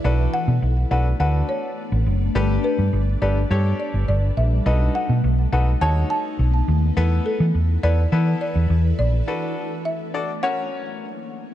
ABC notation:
X:1
M:4/4
L:1/16
Q:1/4=104
K:Bm
V:1 name="Marimba"
d2 f4 f2 f2 c4 z2 | z2 B4 d4 d2 d2 e2 | ^d2 f4 f2 a2 a4 z2 | z2 A4 d4 d4 d2- |
d2 z2 e4 f6 z2 |]
V:2 name="Grand piano"
[DFAB]4 z2 [DFAB] z [DFAB]4 z4 | [DGAB]4 z2 [DGAB] z [DGAc]4 z4 | [^DFAB]4 z2 [DFAB] z [DFAc]4 z4 | [B,EAB]4 z2 [B,EAB] z [B,EAB]4 z4 |
[DFAB]4 z2 [DFAd] z [CF^Ac]4 z4 |]
V:3 name="Ambient pad"
[A,B,D]16 | [G,AB]16 | [A,B,^D]16 | [E,EAB]16 |
z16 |]
V:4 name="Fingered electric bass" clef=bass
B,,,2 z B,, B,,,2 B,,,2 D,,2 z3 A,,, F,,,2 | G,,,2 z G,, G,,,2 G,,,2 G,,2 z G,,, G,,,2 ^A,,,2 | B,,,2 z B,, B,,,2 B,,,2 ^D,,2 z2 B,,,2 D,,2 | E,,2 z E, E,,2 E,,2 E,2 z E,, E,,2 ^A,,,2 |
z16 |]